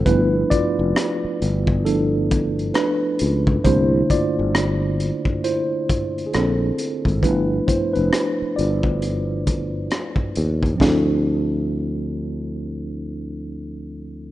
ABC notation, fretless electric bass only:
X:1
M:4/4
L:1/16
Q:"Swing 16ths" 1/4=67
K:Dm
V:1 name="Fretless electric bass" clef=bass
G,,,2 z F,,, z2 G,,,6 z2 ^C,,2 | C,,2 z G,,,4 z4 z B,,,2 z ^G,,, | G,,,2 z F,,, z2 G,,,6 z2 _E,,2 | D,,16 |]